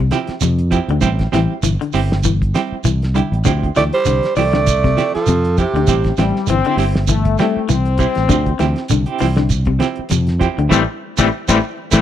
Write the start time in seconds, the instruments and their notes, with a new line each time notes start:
Already playing: fingered electric bass C2
0.00 clean electric guitar C3
0.11 clean electric guitar F3 C4 E4 G4, snare, closed hi-hat, shekere
0.27 muted fingered electric bass stroke, snare, closed hi-hat
0.41 fingered electric bass F2, clean electric guitar C3, snare, closed hi-hat, shekere
0.59 closed hi-hat
0.71 clean electric guitar F3 C4 E4 G4, kick, closed hi-hat, shekere
0.88 fingered electric bass D2, clean electric guitar D3, closed hi-hat
1.01 fingered electric bass A1, clean electric guitar G3 C4 E4 G4, kick, closed hi-hat, shekere
1.19 kick, snare, closed hi-hat
1.32 fingered electric bass A1, clean electric guitar E3 G3 C4 E4 G4, snare, closed hi-hat, shekere
1.63 fingered electric bass G1, clean electric guitar E3, closed hi-hat, shekere
1.81 clean electric guitar D3, closed hi-hat
1.93 fingered electric bass G1, clean electric guitar G3 C4 E4 G4, open hi-hat, shekere
2.12 snare
2.24 clean electric guitar E3, kick, closed hi-hat, shekere
2.42 kick, closed hi-hat
2.54 clean electric guitar G3 C4 E4 G4, snare, closed hi-hat, shekere
2.72 muted fingered electric bass stroke
2.84 fingered electric bass C2, clean electric guitar E3, closed hi-hat, shekere
3.02 snare, closed hi-hat
3.15 clean electric guitar D3 G3 E4 G4, muted clean electric guitar stroke, closed hi-hat, shekere
3.32 fingered electric bass A1, closed hi-hat
3.45 fingered electric bass D2, clean electric guitar D3 F3 C4 E4 G4, kick, closed hi-hat, shekere
3.63 kick, closed hi-hat
3.76 fingered electric bass D2, clean electric guitar E3 F3 E4 G4, tenor saxophone A3, alto saxophone D5, muted clean electric guitar stroke, snare, closed hi-hat, shekere
3.93 tenor saxophone G3, alto saxophone C5, closed hi-hat
4.05 fingered electric bass C2, clean electric guitar D3, closed hi-hat, shekere
4.23 snare, closed hi-hat
4.36 fingered electric bass C2, clean electric guitar E3 F3 C4 E4 G4, tenor saxophone A3, alto saxophone D5, open hi-hat, shekere
4.53 clean electric guitar D3, snare, closed hi-hat
4.66 kick, closed hi-hat, shekere
4.84 clean electric guitar C3, kick, snare, closed hi-hat
4.97 clean electric guitar F3 C4 E4 G4, snare, closed hi-hat, shekere
5.14 tenor saxophone F3, alto saxophone A4, muted fingered electric bass stroke, snare, closed hi-hat
5.27 fingered electric bass F2, clean electric guitar C3, closed hi-hat, shekere
5.45 closed hi-hat
5.57 tenor saxophone C3, clean electric guitar C4 E4 G4, alto saxophone G4, kick, closed hi-hat, shekere
5.74 fingered electric bass D2, clean electric guitar D3, closed hi-hat
5.87 fingered electric bass A1, clean electric guitar G3 C4 E4 G4, kick, closed hi-hat, shekere
6.04 kick, snare, closed hi-hat
6.17 fingered electric bass A1, clean electric guitar E3 G3 C4 E4 G4, trombone section G3, snare, closed hi-hat, shekere
6.36 snare
6.47 fingered electric bass G1, clean electric guitar E3, trombone section C4, closed hi-hat, shekere
6.64 clean electric guitar D3 C4 E4 G4, closed hi-hat
6.77 fingered electric bass G1, clean electric guitar G3 C4 E4 G4, trombone section C4, open hi-hat, shekere
6.95 snare
7.08 clean electric guitar E3, trombone section A3, kick, closed hi-hat, shekere
7.25 kick, closed hi-hat
7.38 clean electric guitar G3 C4 E4 G4, trombone section A3, snare, closed hi-hat, shekere
7.57 muted fingered electric bass stroke
7.69 fingered electric bass C2, clean electric guitar E3, trombone section C4, snare, closed hi-hat, shekere
7.85 closed hi-hat
7.98 clean electric guitar G3 C4 E4 G4, muted clean electric guitar stroke, kick, closed hi-hat, shekere
8.15 fingered electric bass A1, snare, closed hi-hat
8.29 fingered electric bass D2, clean electric guitar D3 F3 C4 G4, muted clean electric guitar stroke, kick, closed hi-hat, shekere
8.46 kick, closed hi-hat
8.59 fingered electric bass D2, clean electric guitar E3 F3 C4 E4 G4, snare, closed hi-hat, shekere
8.76 snare, closed hi-hat
8.88 fingered electric bass C2, clean electric guitar D3, closed hi-hat, shekere
9.06 clean electric guitar C4 E4 G4, closed hi-hat
9.18 fingered electric bass C2, clean electric guitar E3 F3 C4 E4 G4, open hi-hat, shekere
9.36 clean electric guitar D3, snare, closed hi-hat
9.49 kick, closed hi-hat, shekere
9.65 clean electric guitar C3, kick, closed hi-hat
9.79 clean electric guitar F3 C4 E4 G4, snare, closed hi-hat, shekere
9.96 muted fingered electric bass stroke, closed hi-hat
10.09 fingered electric bass F2, clean electric guitar C3, snare, closed hi-hat, shekere
10.27 snare, closed hi-hat
10.39 clean electric guitar F3 C4 E4 G4, kick, closed hi-hat, shekere
10.58 fingered electric bass D2, clean electric guitar D3, closed hi-hat
10.69 fingered electric bass A1, clean electric guitar E3 G3 A3 C4 E4, trombone section G3 A3 C4, kick, snare, shekere
11.17 fingered electric bass A1, clean electric guitar E3 G3 A3 C4 E4, trombone section G3 A3 C4, kick, snare, shekere
11.48 fingered electric bass A1, clean electric guitar E3 G3 A3 C4 E4, trombone section G3 A3 C4, kick, snare, shekere
11.91 fingered electric bass A1, clean electric guitar E3 G3 A3 C4 E4, trombone section G3 A3 C4, kick, snare, shekere